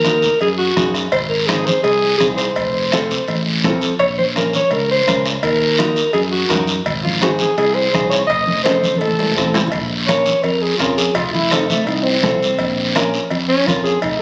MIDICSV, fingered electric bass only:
0, 0, Header, 1, 2, 480
1, 0, Start_track
1, 0, Tempo, 358209
1, 1520, Time_signature, 4, 2, 24, 8
1, 19053, End_track
2, 0, Start_track
2, 0, Title_t, "Fingered electric bass"
2, 0, Program_c, 0, 33
2, 0, Note_on_c, 0, 39, 87
2, 363, Note_off_c, 0, 39, 0
2, 551, Note_on_c, 0, 42, 89
2, 939, Note_off_c, 0, 42, 0
2, 1031, Note_on_c, 0, 42, 90
2, 1418, Note_off_c, 0, 42, 0
2, 1509, Note_on_c, 0, 32, 91
2, 2282, Note_off_c, 0, 32, 0
2, 2472, Note_on_c, 0, 36, 98
2, 2859, Note_off_c, 0, 36, 0
2, 2955, Note_on_c, 0, 36, 94
2, 3341, Note_off_c, 0, 36, 0
2, 3442, Note_on_c, 0, 29, 85
2, 4209, Note_off_c, 0, 29, 0
2, 4399, Note_on_c, 0, 33, 96
2, 4881, Note_on_c, 0, 41, 91
2, 4902, Note_off_c, 0, 33, 0
2, 5265, Note_off_c, 0, 41, 0
2, 5363, Note_on_c, 0, 34, 82
2, 6130, Note_off_c, 0, 34, 0
2, 6316, Note_on_c, 0, 37, 96
2, 6701, Note_off_c, 0, 37, 0
2, 6796, Note_on_c, 0, 37, 97
2, 7181, Note_off_c, 0, 37, 0
2, 7274, Note_on_c, 0, 39, 83
2, 8044, Note_off_c, 0, 39, 0
2, 8233, Note_on_c, 0, 42, 94
2, 8620, Note_off_c, 0, 42, 0
2, 8712, Note_on_c, 0, 42, 90
2, 9099, Note_off_c, 0, 42, 0
2, 9196, Note_on_c, 0, 32, 84
2, 9966, Note_off_c, 0, 32, 0
2, 10155, Note_on_c, 0, 36, 107
2, 10541, Note_off_c, 0, 36, 0
2, 10638, Note_on_c, 0, 36, 97
2, 11023, Note_off_c, 0, 36, 0
2, 11126, Note_on_c, 0, 29, 83
2, 11892, Note_off_c, 0, 29, 0
2, 12069, Note_on_c, 0, 33, 110
2, 12458, Note_off_c, 0, 33, 0
2, 12565, Note_on_c, 0, 33, 84
2, 12947, Note_off_c, 0, 33, 0
2, 13040, Note_on_c, 0, 34, 82
2, 13809, Note_off_c, 0, 34, 0
2, 13990, Note_on_c, 0, 41, 81
2, 14379, Note_off_c, 0, 41, 0
2, 14469, Note_on_c, 0, 41, 86
2, 14858, Note_off_c, 0, 41, 0
2, 14951, Note_on_c, 0, 29, 76
2, 15724, Note_off_c, 0, 29, 0
2, 15910, Note_on_c, 0, 36, 84
2, 16299, Note_off_c, 0, 36, 0
2, 16394, Note_on_c, 0, 36, 95
2, 16782, Note_off_c, 0, 36, 0
2, 16876, Note_on_c, 0, 34, 93
2, 17648, Note_off_c, 0, 34, 0
2, 17837, Note_on_c, 0, 41, 88
2, 18224, Note_off_c, 0, 41, 0
2, 18325, Note_on_c, 0, 41, 91
2, 18709, Note_off_c, 0, 41, 0
2, 18805, Note_on_c, 0, 29, 82
2, 19053, Note_off_c, 0, 29, 0
2, 19053, End_track
0, 0, End_of_file